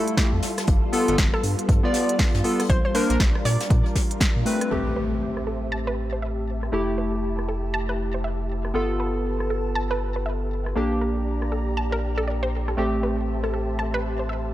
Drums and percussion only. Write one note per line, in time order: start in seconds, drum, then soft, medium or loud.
0.08 closed hi-hat medium
0.17 kick loud
0.17 snare loud
0.17 closed hi-hat medium
0.17 closed hi-hat loud
0.43 snare loud
0.43 closed hi-hat medium
0.43 open hi-hat medium
0.58 cross-stick medium
0.58 snare loud
0.58 closed hi-hat medium
0.67 kick loud
0.67 closed hi-hat medium
0.93 closed hi-hat medium
0.93 open hi-hat loud
1.08 closed hi-hat medium
1.08 closed hi-hat soft
1.18 kick loud
1.18 snare loud
1.18 closed hi-hat medium
1.34 cross-stick medium
1.44 closed hi-hat medium
1.44 open hi-hat medium
1.59 closed hi-hat medium
1.69 kick loud
1.69 closed hi-hat medium
1.94 snare medium
1.94 closed hi-hat medium
1.94 open hi-hat loud
2.09 closed hi-hat medium
2.19 kick loud
2.19 snare loud
2.19 closed hi-hat medium
2.19 open hi-hat medium
2.34 snare loud
2.34 closed hi-hat medium
2.44 open hi-hat medium
2.60 cross-stick medium
2.60 closed hi-hat medium
2.60 open hi-hat medium
2.70 kick loud
2.70 closed hi-hat medium
2.95 closed hi-hat medium
2.95 open hi-hat loud
3.10 closed hi-hat medium
3.10 closed hi-hat soft
3.20 kick loud
3.20 snare loud
3.20 closed hi-hat medium
3.20 closed hi-hat soft
3.35 cross-stick medium
3.45 snare loud
3.45 closed hi-hat medium
3.45 open hi-hat medium
3.61 snare medium
3.61 closed hi-hat medium
3.70 kick loud
3.70 closed hi-hat medium
3.86 closed hi-hat soft
3.96 kick medium
3.96 snare loud
3.96 closed hi-hat medium
3.96 open hi-hat loud
4.11 closed hi-hat medium
4.20 kick loud
4.20 snare loud
4.20 closed hi-hat medium
4.46 closed hi-hat medium
4.46 open hi-hat medium
4.61 cross-stick medium
4.61 closed hi-hat medium
5.37 cross-stick medium
6.63 cross-stick medium
7.39 cross-stick medium
8.65 cross-stick medium
9.40 cross-stick medium
10.66 cross-stick medium
11.42 cross-stick medium
12.68 cross-stick medium
13.44 cross-stick medium